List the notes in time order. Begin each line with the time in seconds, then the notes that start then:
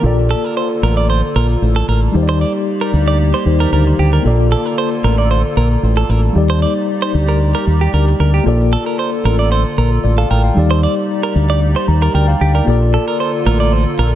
0.01 A#1 D3 A#3 F4 A4
0.06 D5
0.31 A4
0.44 A#4
0.57 C5
0.83 A1 A#4
0.97 D5
1.10 C5
1.35 A#1 A#4
1.62 A1
1.76 A4
1.88 A1 A#4
2.12 D#2 G3 D#4 G4 D5
2.17 C5
2.23 D5
2.29 C5
2.41 D5
2.81 A#4
2.93 D2
3.08 D5
3.34 C5
3.45 D#2 D#3 D#4 G4 C5
3.60 A#4
3.72 D2 A#4
3.99 D2 G4
4.13 A#4
4.22 A#1 D3 A#3 F4 A4
4.27 D5
4.52 A4
4.66 A#4
4.78 C5
5.04 A1 A#4
5.18 D5
5.31 C5
5.56 A#1 A#4
5.83 A1
5.97 A4
6.09 A1 A#4
6.33 D#2 G3 D#4 G4 D5
6.38 D5
6.50 C5
6.62 D5
7.02 C5
7.14 D2
7.29 A#4
7.55 A#4
7.67 D#2
7.81 G4
7.93 D2 A#4
8.19 D2 A#4
8.34 G4
8.43 A#1 D3 A#3 F4 A4
8.48 D5
8.73 A4
8.86 A#4
8.99 C5
9.25 A1 A#4
9.39 D5
9.52 C5
9.78 A#1 A#4
10.04 A1 D5
10.18 A4 F5
10.30 A1 A#4 G5
10.44 F5
10.54 D#2 G3 D#4 G4 D5
10.59 D5
10.71 C5
10.83 D5
11.23 A#4
11.35 D2
11.50 D5
11.76 C5
11.88 D#2 A#5
12.02 A#4
12.14 D2 A#4 G5
12.28 F5
12.41 D2 G4 G5
12.54 A#4 D5
12.65 A#1 D3 A#3 F4 A4
12.70 D5
12.94 A4
13.08 A#4
13.20 C5
13.46 A1 A#4
13.60 D5
13.73 C5
13.98 A#1 A#4